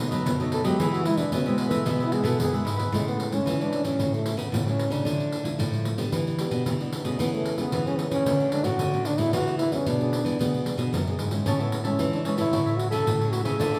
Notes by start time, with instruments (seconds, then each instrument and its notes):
Already playing: nylon-string guitar B2
0.00 nylon-string guitar F#3 A3 D#4, pandeiro
0.11 nylon-string guitar F#3, cavaquinho A4 B4 D#5, pandeiro
0.26 nylon-string guitar F#2 B2, pandeiro
0.40 nylon-string guitar F#3 A3 D#4, cavaquinho A4 B4 D#5, pandeiro
0.51 cavaquinho D#4 A4 B4 D#5, trombone A4, pandeiro
0.64 nylon-string guitar F#3 G#3 B3 E4, trombone G4, cavaquinho A4 B4 D#5, pandeiro
0.79 nylon-string guitar E3, cavaquinho E4 G#4 B4 E5, trombone G#4, pandeiro
0.93 trombone F#4, cavaquinho G#4 B4 E5, pandeiro
1.05 nylon-string guitar G#3 B3 E4, trombone E4, muted cavaquinho stroke, pandeiro
1.17 trombone D4, cavaquinho G#4 B4 E5, pandeiro
1.32 nylon-string guitar B2, trombone C#4, pandeiro
1.46 nylon-string guitar G#3 B3 E4, trombone C4, cavaquinho G#4 B4 E5, pandeiro
1.58 trombone B3, cavaquinho E4 G#4 B4 E5, pandeiro
1.70 nylon-string guitar E3, trombone A3, cavaquinho G#4 B4 E5, pandeiro
1.85 nylon-string guitar B2 E3 G#3 B3 E4, trombone G#3, cavaquinho E4 G#4 B4 E5, pandeiro
1.96 trombone B3, cavaquinho E5, pandeiro
2.00 cavaquinho G#4 B4
2.05 trombone E4
2.11 nylon-string guitar G#3 B3 E4, trombone G#4, muted cavaquinho stroke, pandeiro
2.23 nylon-string guitar B2, cavaquinho G#4 B4 E5, trombone A4, pandeiro
2.39 nylon-string guitar F#2 B2, trombone G#4, pandeiro
2.52 nylon-string guitar G#3 B3 E4, cavaquinho G#4 B4 E5, pandeiro
2.64 nylon-string guitar G#2, cavaquinho E4 G#4 B4 E5, pandeiro
2.76 cavaquinho G#4 B4 E5, pandeiro
2.92 nylon-string guitar A2 G#3 C#4 E4, trombone G#3, pandeiro
3.08 trombone B3, pandeiro
3.20 pandeiro
3.31 nylon-string guitar G#3 C#4 E4, trombone C#4, pandeiro
3.46 nylon-string guitar E3, pandeiro
3.60 nylon-string guitar G#3 C#4 E4, trombone D4, pandeiro
3.73 pandeiro
3.84 nylon-string guitar A2 F#3 C#4 E4, trombone C#4, pandeiro
3.99 nylon-string guitar A2, pandeiro
4.14 trombone A3, pandeiro
4.25 nylon-string guitar F#3 C#4 E4, pandeiro
4.37 nylon-string guitar C#3, trombone B3, pandeiro
4.52 nylon-string guitar A2, pandeiro
4.66 nylon-string guitar F#3 C#4 E4, trombone C#4, pandeiro
4.79 pandeiro
4.90 nylon-string guitar C#3, trombone D4, pandeiro
5.05 nylon-string guitar D3 F3 A3 E4, pandeiro
5.20 pandeiro
5.32 pandeiro
5.43 nylon-string guitar F3 A3 E4, pandeiro
5.59 nylon-string guitar A2, pandeiro
5.73 nylon-string guitar F3 A3 E4, pandeiro
5.85 pandeiro
5.98 nylon-string guitar D3 B3 D4 G4, pandeiro
6.12 nylon-string guitar E3, pandeiro
6.27 pandeiro
6.39 nylon-string guitar B3 D4 G4, pandeiro
6.51 nylon-string guitar B2, pandeiro
6.66 nylon-string guitar B2 E3, pandeiro
6.80 nylon-string guitar B3 D4 G4, pandeiro
6.93 pandeiro
7.04 nylon-string guitar B2 A3 C#4 G#4, pandeiro
7.19 nylon-string guitar E3, trombone B3, pandeiro
7.34 trombone A3, pandeiro
7.46 pandeiro
7.58 nylon-string guitar A3 C#4 G#4, trombone B3, pandeiro
7.72 nylon-string guitar E3, pandeiro
7.87 nylon-string guitar A3 C#4 G#4, trombone C#4, pandeiro
7.99 trombone B3, pandeiro
8.11 nylon-string guitar E3, trombone C#4, pandeiro
8.26 nylon-string guitar D3 F#3 A3 C#4, pandeiro
8.40 pandeiro
8.52 nylon-string guitar F#3 A3 C#4, trombone D4, pandeiro
8.64 nylon-string guitar A2, trombone F#4, pandeiro
8.79 nylon-string guitar A2 D3, pandeiro
8.93 nylon-string guitar F#3 A3 C#4, pandeiro
9.05 trombone D4, pandeiro
9.18 nylon-string guitar A2 B3 D4 G#4, trombone E4, pandeiro
9.33 nylon-string guitar E3, trombone F#4, pandeiro
9.47 pandeiro
9.59 trombone E4, pandeiro
9.71 nylon-string guitar B3 D4 G#4, trombone C#4, pandeiro
9.86 nylon-string guitar B2, trombone D4, pandeiro
10.00 nylon-string guitar B3 D4 G#4, pandeiro
10.13 pandeiro
10.24 nylon-string guitar E3 B3 D4 G#4, pandeiro
10.39 nylon-string guitar B2 E3 B3 D4 G#4, trombone B3, pandeiro
10.54 pandeiro
10.65 nylon-string guitar B3 D4 G#4, pandeiro
10.78 nylon-string guitar B2, pandeiro
10.93 nylon-string guitar F#2 B2, pandeiro
11.07 nylon-string guitar B3 D4 G#4, pandeiro
11.19 nylon-string guitar G#2, pandeiro
11.31 nylon-string guitar G#3 C#4 E4, pandeiro
11.46 nylon-string guitar A2, trombone C#4, cavaquinho G#4 C#5 E5 A5, pandeiro
11.59 trombone B3, cavaquinho C#5 E5 A5, pandeiro
11.72 muted cavaquinho stroke, pandeiro
11.84 nylon-string guitar G#3 C#4 E4, trombone C#4, cavaquinho C#5 E5 A5, pandeiro
11.99 nylon-string guitar E3, pandeiro
12.12 trombone D4, cavaquinho C#5 E5 A5, pandeiro
12.24 nylon-string guitar G#3 C#4 E4, trombone C#4, cavaquinho G#4 C#5 E5 A5, pandeiro
12.37 nylon-string guitar A2, trombone E4, cavaquinho C#5 E5 A5, pandeiro
12.52 nylon-string guitar A2 F#3 C#4 E4, cavaquinho F#4 A4 C#5 E5, pandeiro
12.66 cavaquinho A4 C#5 E5, pandeiro
12.78 trombone F#4, muted cavaquinho stroke, pandeiro
12.90 nylon-string guitar C#3 F#3 C#4 E4, trombone A4, cavaquinho A4 C#5 E5, pandeiro
13.06 nylon-string guitar A2, pandeiro
13.20 nylon-string guitar F#3 C#4 E4, cavaquinho A4 C#5 E5, pandeiro
13.32 cavaquinho F#4 A4 C#5 E5, trombone F#4, pandeiro
13.44 nylon-string guitar C#3 F3 A3 E4, trombone G#4, cavaquinho A4 C#5 E5, pandeiro
13.60 nylon-string guitar D3, cavaquinho F4 A4 D5 E5, trombone A4, pandeiro
13.73 cavaquinho A4 D5 E5, pandeiro